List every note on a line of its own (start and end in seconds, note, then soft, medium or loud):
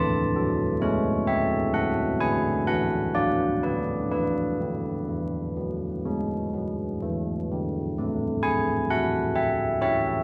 0.00 0.25 E3 medium
0.00 0.31 A4 soft
0.00 0.33 A5 medium
0.36 0.73 F#3 medium
0.36 2.17 A4 soft
0.81 1.18 G#3 medium
0.81 1.26 C#5 medium
1.27 1.65 A3 soft
1.27 1.72 E5 medium
1.74 2.11 F#3 soft
1.74 2.18 F#5 medium
2.20 2.58 D3 soft
2.20 3.62 B4 soft
2.20 2.65 G#5 medium
2.67 3.05 E3 soft
2.67 3.12 F#5 medium
3.15 3.53 F#3 soft
3.15 3.60 D5 medium
3.63 4.02 D3 soft
3.63 4.09 B4 medium
4.11 4.50 E3 soft
4.11 6.98 B4 medium
4.60 4.99 D3 soft
5.08 5.47 E3 soft
5.56 5.96 F#3 soft
6.05 6.44 G#3 soft
6.54 6.92 F#3 soft
7.02 7.40 E3 soft
7.51 7.89 D3 soft
7.98 10.23 A3 medium
8.43 8.88 G#5 medium
8.90 9.81 E4 soft
8.90 9.34 F#5 medium
9.36 9.79 E5 medium
9.81 10.23 E4 soft
9.81 10.23 C#5 medium
9.81 10.23 E5 medium